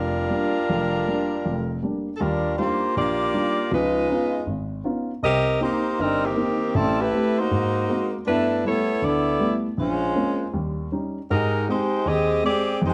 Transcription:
Already playing: grand piano F1, saxophone section G3 D4 F4 A#4
0.30 grand piano G3 A#3 D4
0.69 grand piano F1 F2
1.07 grand piano G3 A#3 D4
1.45 grand piano F1 F2
1.82 grand piano G3 A#3 D4
2.17 grand piano D#2 G3, saxophone section A4
2.21 saxophone section G3 D4 F4 A#4
2.58 grand piano G3 D4 D#4 F4, saxophone section A#3 F4 G4 C5
2.96 grand piano A#1, saxophone section A#3 F4 G4 D5
3.34 grand piano G3 D4 D#4 F4
3.71 grand piano C#2 F3, saxophone section G#3 D#4 F4 B4
4.09 grand piano B3 C#4 D#4 F4
4.46 grand piano G#1
4.84 grand piano B3 C#4 D#4 F4
5.23 grand piano C2, saxophone section C4 G4 A#4 D#5
5.60 grand piano A#3 C4 D#4, saxophone section A#3 D#4 G4 C5
5.99 grand piano G1, saxophone section G3 C4 D#4 A#4
6.24 saxophone section D#3 A#3 C4 G4
6.36 grand piano A#3 C4 D#4
6.75 grand piano A1 A2, saxophone section G3 C4 E4 A4
7.00 saxophone section A3 E4 G4 B4
7.13 grand piano A3 C4 G4
7.39 saxophone section A#3 D#4 F#4 C5
7.51 grand piano G#2
7.89 grand piano G#3 A#3 C4 F#4
8.27 grand piano G2 B3, saxophone section A3 D4 E4 B4
8.65 grand piano G3 A3 B3 E4, saxophone section B3 E4 A4 C#5
9.02 grand piano D2, saxophone section B3 E4 A4 D5
9.40 grand piano G3 A3 B3 E4
9.77 grand piano A#1, saxophone section G#3 C#4 F4 C5
10.15 grand piano G#3 A#3 C4 C#4
10.53 grand piano D#2 G3
10.92 grand piano G3 C#4 D#4
11.30 grand piano G#2, saxophone section G#3 D#4 G4 A#4
11.68 grand piano G#3 C4 G4, saxophone section G#3 D#4 G4 C5
12.05 grand piano D#2, saxophone section C4 G4 G#4 D#5
12.44 grand piano G#3 C4 G4, saxophone section C4 G4 G#4 D5
12.82 grand piano F2, saxophone section G#3 D#4 G4
12.86 saxophone section C5

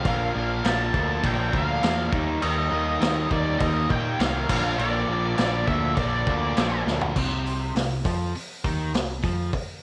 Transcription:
Already playing: lead electric guitar F5
0.05 picked electric bass A#1, overdriven electric guitar A#2 F3 A#3 D4, kick, crash
0.34 picked electric bass A#1, overdriven electric guitar A#2 F3 A#3 D4
0.64 picked electric bass A#1, overdriven electric guitar A#2 F3 A#3 D4, lead electric guitar A5, snare, crash
0.94 picked electric bass D2, overdriven electric guitar A#2 F3 A#3 D4, kick
1.24 picked electric bass A#1, overdriven electric guitar A#2 F3 A#3 D4, lead electric guitar G5, kick, crash
1.53 picked electric bass D2, overdriven electric guitar A#2 F3 A#3 D4, kick
1.57 lead electric guitar F5
1.82 picked electric bass E2, overdriven electric guitar A#2 F3 A#3 D4, snare, crash
2.12 picked electric bass D#2, overdriven electric guitar D#3 G3 A#3 D#4, kick
2.42 picked electric bass D#2, overdriven electric guitar D#3 G3 A#3 D#4, lead electric guitar D#5, crash
2.72 picked electric bass D#2, overdriven electric guitar D#3 G3 A#3 D#4
3.01 picked electric bass D#2, overdriven electric guitar D#3 G3 A#3 D#4, snare, crash
3.30 picked electric bass D#2, overdriven electric guitar D#3 G3 A#3 D#4, lead electric guitar D5, kick
3.59 picked electric bass D#2, overdriven electric guitar D#3 G3 A#3 D#4, lead electric guitar D#5, kick, crash
3.90 picked electric bass A#2, overdriven electric guitar D#3 G3 A#3 D#4, lead electric guitar G5, kick
4.19 picked electric bass C2, overdriven electric guitar D#3 G3 A#3 D#4, lead electric guitar F5, snare, crash
4.49 picked electric bass A#1, overdriven electric guitar A#2 D3 F3 A#3 D4, kick, crash
4.62 lead electric guitar F5
4.78 picked electric bass A#1, overdriven electric guitar A#2 D3 F3 A#3 D4, lead electric guitar D5, crash
5.08 picked electric bass A#1, overdriven electric guitar A#2 D3 F3 A#3 D4
5.36 picked electric bass A#1, overdriven electric guitar A#2 D3 F3 A#3, lead electric guitar D5, snare, crash
5.41 overdriven electric guitar D4
5.67 picked electric bass D2, overdriven electric guitar A#2 D3 F3 A#3 D4, lead electric guitar E5, kick
5.96 picked electric bass A#1, overdriven electric guitar A#2 D3 F3 A#3 D4, lead electric guitar D5, kick, crash
6.27 picked electric bass D2, overdriven electric guitar A#2 D3 F3 A#3 D4, kick
6.57 picked electric bass A#1, overdriven electric guitar A#2 D3 F3 A#3 D4, snare, crash
6.86 picked electric bass D2, overdriven electric guitar A#2 D3 F3 A#3 D4, snare
7.01 floor tom
7.16 picked electric bass C2, overdriven electric guitar C3, kick, crash
7.46 open hi-hat
7.75 picked electric bass C2, overdriven electric guitar C3, snare, open hi-hat
8.05 picked electric bass F2, overdriven electric guitar F3, kick, open hi-hat
8.35 muted picked electric bass stroke, muted overdriven electric guitar stroke, open hi-hat
8.64 picked electric bass D#2, overdriven electric guitar D#3, kick, open hi-hat
8.94 picked electric bass C2, overdriven electric guitar C3, snare, open hi-hat
9.23 picked electric bass F2, overdriven electric guitar F3, kick, open hi-hat
9.53 muted picked electric bass stroke, muted overdriven electric guitar stroke, kick, open hi-hat

